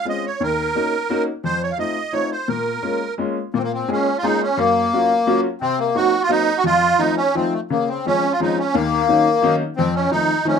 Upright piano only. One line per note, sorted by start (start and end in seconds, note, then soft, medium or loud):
0.05 0.23 G#3 medium
0.05 0.23 C4 soft
0.05 0.23 C#4 soft
0.05 0.23 F4 medium
0.40 0.66 D#2 medium
0.75 0.93 A#3 medium
0.75 0.93 C#4 soft
0.75 0.93 D#4 medium
0.75 0.93 F#4 medium
1.10 1.27 A#3 medium
1.10 1.27 C#4 medium
1.10 1.27 D#4 medium
1.10 1.27 F#4 medium
1.44 1.69 F2 medium
1.78 1.95 A3 medium
1.78 1.95 C4 soft
1.78 1.96 D#4 soft
1.78 1.96 F4 medium
2.13 2.30 A3 medium
2.13 2.30 C4 medium
2.13 2.30 D#4 medium
2.13 2.30 F4 medium
2.48 2.74 A#2 medium
2.82 3.00 G#3 medium
2.82 3.00 A#3 medium
2.82 3.00 C#4 medium
2.82 3.00 F4 medium
3.18 3.36 G#3 medium
3.18 3.36 A#3 medium
3.18 3.36 C#4 medium
3.18 3.36 F4 medium
3.54 3.80 A#2 medium
3.88 4.06 G#3 medium
3.88 4.06 A#3 medium
3.88 4.06 C#4 soft
3.88 4.06 F4 medium
3.88 4.06 G#4 medium
4.23 4.41 G#3 medium
4.23 4.41 A#3 medium
4.23 4.41 C#4 medium
4.23 4.41 F4 medium
4.23 4.41 G#4 medium
4.57 4.84 F#2 medium
4.93 5.11 F#3 medium
4.93 5.11 A#3 medium
4.93 5.11 C#4 medium
4.93 5.11 F4 medium
4.93 5.11 F#4 medium
5.27 5.45 F#3 medium
5.27 5.45 A#3 medium
5.27 5.45 C#4 medium
5.27 5.45 F4 medium
5.27 5.45 F#4 medium
5.61 5.87 C3 medium
5.95 6.13 F#3 medium
5.95 6.13 A#3 medium
5.95 6.13 C4 medium
5.95 6.13 D#4 medium
5.95 6.13 F#4 medium
6.29 6.47 F#3 medium
6.29 6.47 A#3 medium
6.29 6.47 C4 medium
6.29 6.47 D#4 medium
6.29 6.47 F#4 medium
6.64 6.90 F2 medium
6.99 7.17 F3 medium
6.99 7.17 A3 medium
6.99 7.17 C4 medium
6.99 7.17 D#4 medium
6.99 7.17 F4 medium
7.35 7.53 F3 medium
7.35 7.53 A3 medium
7.35 7.53 C4 medium
7.35 7.53 D#4 medium
7.35 7.53 F4 medium
7.70 7.96 C#3 medium
8.06 8.23 F3 medium
8.06 8.23 G#3 medium
8.06 8.23 C4 soft
8.06 8.23 C#4 soft
8.06 8.23 F4 medium
8.40 8.57 F3 medium
8.40 8.57 G#3 medium
8.40 8.57 C4 medium
8.40 8.57 C#4 medium
8.40 8.58 F4 medium
8.75 9.00 D#2 medium
9.09 9.26 D#3 medium
9.09 9.26 F#3 medium
9.09 9.26 A#3 medium
9.09 9.26 C#4 medium
9.09 9.26 D#4 medium
9.43 9.60 D#3 medium
9.43 9.60 F#3 medium
9.43 9.60 A#3 medium
9.43 9.61 C#4 medium
9.43 9.60 D#4 medium
9.79 10.04 F2 medium
10.11 10.29 D#3 medium
10.11 10.29 F3 medium
10.11 10.29 A3 medium
10.11 10.29 C4 medium
10.11 10.29 D#4 medium
10.45 10.59 D#3 medium
10.45 10.59 F3 medium
10.45 10.59 A3 medium
10.45 10.59 C4 medium
10.45 10.59 D#4 medium